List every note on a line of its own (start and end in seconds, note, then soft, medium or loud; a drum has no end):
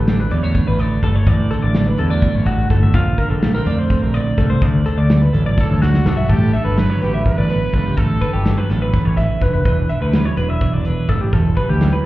0.00 0.25 A1 medium
0.00 0.79 D3 medium
0.00 0.20 A4 medium
0.07 0.57 D4 medium
0.07 snare loud
0.07 closed hi-hat medium
0.20 0.32 B4 medium
0.31 0.60 E2 medium
0.31 0.44 F#3 medium
0.31 0.43 D5 medium
0.31 closed hi-hat medium
0.43 1.03 A3 soft
0.43 0.67 C#5 medium
0.55 1.75 D4 soft
0.55 kick medium
0.55 closed hi-hat medium
0.67 0.96 A1 medium
0.67 0.80 B4 medium
0.79 1.50 D3 medium
0.79 1.03 D5 medium
0.79 closed hi-hat medium
1.03 1.23 G1 medium
1.03 1.99 A3 medium
1.03 1.16 A4 medium
1.03 kick medium
1.03 snare soft
1.03 closed hi-hat medium
1.16 1.27 C#5 medium
1.27 1.46 A1 medium
1.27 1.51 A2 medium
1.27 1.51 D5 medium
1.27 kick loud
1.27 closed hi-hat medium
1.51 3.18 D3 medium
1.51 1.63 A4 medium
1.51 closed hi-hat medium
1.63 1.92 A1 medium
1.63 1.87 D5 medium
1.74 3.43 D4 medium
1.74 snare medium
1.74 closed hi-hat medium
1.87 1.99 B4 medium
1.98 2.28 E2 medium
1.98 2.11 F#3 medium
1.98 2.11 A4 medium
1.98 closed hi-hat medium
2.10 2.95 A3 soft
2.10 2.35 D5 medium
2.22 2.47 F#2 medium
2.22 kick medium
2.22 snare soft
2.22 closed hi-hat medium
2.35 2.64 A1 medium
2.35 2.47 C#5 medium
2.46 2.71 G2 medium
2.46 2.70 F#4 medium
2.46 kick medium
2.46 closed hi-hat medium
2.70 2.90 G1 medium
2.70 2.94 A2 medium
2.70 2.83 A4 medium
2.70 kick medium
2.70 snare soft
2.70 closed hi-hat medium
2.83 2.95 E5 medium
2.94 3.14 A#1 loud
2.94 3.19 A#2 medium
2.94 3.19 F4 medium
2.94 kick loud
2.94 closed hi-hat medium
3.18 4.13 D3 medium
3.18 3.30 A#4 medium
3.18 kick medium
3.18 closed hi-hat medium
3.30 3.60 A#1 medium
3.30 3.54 A4 medium
3.42 3.55 A3 medium
3.42 snare loud
3.42 closed hi-hat medium
3.55 3.89 C4 soft
3.55 3.67 A#4 medium
3.66 3.96 F2 medium
3.66 4.38 A3 medium
3.66 3.79 D5 medium
3.66 closed hi-hat medium
3.79 4.02 C5 medium
3.90 4.59 C4 medium
3.90 kick medium
3.90 closed hi-hat medium
4.02 4.32 A#1 medium
4.02 4.14 A#4 medium
4.14 4.84 D3 medium
4.14 4.38 D5 medium
4.14 closed hi-hat medium
4.38 4.58 C2 medium
4.38 5.13 A3 medium
4.38 4.50 A4 medium
4.38 kick medium
4.38 snare soft
4.38 closed hi-hat medium
4.50 4.62 C5 medium
4.62 4.81 D2 medium
4.62 5.57 D2 medium
4.62 4.86 D5 medium
4.62 kick medium
4.62 closed hi-hat medium
4.85 6.53 D3 medium
4.85 4.98 A4 medium
4.85 closed hi-hat medium
4.98 5.27 D2 medium
4.98 5.22 D5 medium
5.10 6.27 B3 medium
5.10 snare loud
5.10 closed hi-hat medium
5.22 5.33 B4 medium
5.33 5.63 A1 medium
5.33 6.77 F#3 medium
5.33 5.46 A4 medium
5.33 closed hi-hat medium
5.46 5.70 D5 medium
5.57 5.81 E2 medium
5.57 5.84 A4 medium
5.57 kick medium
5.57 snare medium
5.70 5.99 D2 medium
5.70 5.82 C#5 medium
5.81 6.04 F#2 medium
5.81 6.06 F#4 medium
5.81 6.33 F#4 medium
5.81 snare medium
5.94 snare medium
6.04 6.25 B1 medium
6.04 6.29 G2 medium
6.04 6.18 A4 medium
6.04 snare medium
6.17 6.29 E5 medium
6.29 6.49 A1 medium
6.29 6.53 A2 medium
6.29 6.54 G4 medium
6.29 6.53 A4 medium
6.29 kick medium
6.29 closed hi-hat medium
6.53 7.74 D3 medium
6.53 6.80 A4 medium
6.53 6.64 E5 medium
6.53 closed hi-hat soft
6.65 6.86 G1 medium
6.65 6.90 B4 medium
6.77 8.47 F#3 medium
6.77 7.02 B4 loud
6.77 snare loud
6.77 closed hi-hat medium
6.90 7.01 C#5 medium
7.02 7.22 A1 medium
7.02 7.50 B3 soft
7.02 7.24 G4 medium
7.02 7.14 B4 medium
7.02 closed hi-hat medium
7.14 7.38 E5 medium
7.25 7.95 E2 medium
7.25 7.93 B4 medium
7.25 kick medium
7.25 closed hi-hat medium
7.38 7.58 A1 medium
7.38 7.50 D5 medium
7.50 8.01 B3 medium
7.50 7.75 B4 medium
7.50 closed hi-hat medium
7.73 7.93 C#2 medium
7.73 8.22 D3 medium
7.73 7.86 A4 medium
7.73 kick medium
7.73 closed hi-hat medium
7.86 7.97 G4 medium
7.97 8.17 A1 medium
7.97 8.22 A2 medium
7.97 8.21 A4 medium
7.97 8.65 A4 medium
7.97 kick loud
7.97 closed hi-hat medium
8.21 9.42 D3 medium
8.21 8.33 B4 medium
8.21 kick medium
8.21 closed hi-hat medium
8.33 8.53 G1 medium
8.33 8.58 G4 medium
8.45 9.69 F#3 medium
8.45 snare medium
8.45 closed hi-hat medium
8.58 8.70 B4 medium
8.70 8.89 A1 medium
8.70 9.18 B3 medium
8.70 8.82 A4 medium
8.70 snare soft
8.70 closed hi-hat medium
8.82 9.05 B4 medium
8.94 9.63 E2 medium
8.94 kick loud
8.94 snare soft
8.94 closed hi-hat medium
9.05 9.25 A1 medium
9.05 9.17 C#5 medium
9.17 9.68 B3 medium
9.17 9.41 E5 medium
9.17 kick medium
9.17 snare soft
9.17 closed hi-hat medium
9.41 9.61 F1 medium
9.41 9.66 D3 medium
9.41 9.52 B4 medium
9.41 kick medium
9.41 closed hi-hat medium
9.53 9.64 B4 medium
9.65 9.85 E1 medium
9.65 11.31 E2 medium
9.65 9.90 E3 medium
9.65 10.39 D4 medium
9.65 9.89 B4 medium
9.65 kick loud
9.65 closed hi-hat medium
9.89 11.09 E3 medium
9.89 10.01 E5 medium
9.89 closed hi-hat medium
10.01 10.21 D2 medium
10.01 10.25 B4 medium
10.13 11.81 F#3 medium
10.13 snare loud
10.13 closed hi-hat medium
10.25 10.37 C#5 medium
10.37 10.57 E1 medium
10.37 10.86 D4 medium
10.37 10.49 B4 medium
10.37 closed hi-hat medium
10.50 10.74 E5 medium
10.61 11.09 B2 medium
10.61 kick medium
10.61 closed hi-hat medium
10.74 10.93 E1 medium
10.74 10.85 D5 medium
10.85 11.36 D4 medium
10.85 11.09 B4 medium
10.85 closed hi-hat medium
11.09 11.29 A1 medium
11.09 11.56 E3 medium
11.09 11.21 A4 medium
11.09 kick medium
11.09 closed hi-hat medium
11.21 11.33 G4 medium
11.33 11.53 E1 medium
11.33 12.05 E2 medium
11.33 11.57 A4 medium
11.33 kick loud
11.33 closed hi-hat medium
11.57 12.05 E3 medium
11.57 11.69 B4 medium
11.57 kick medium
11.57 closed hi-hat medium
11.69 11.89 D2 medium
11.69 11.93 G4 medium
11.81 12.05 F#3 medium
11.81 snare medium
11.81 closed hi-hat medium
11.93 12.05 B4 medium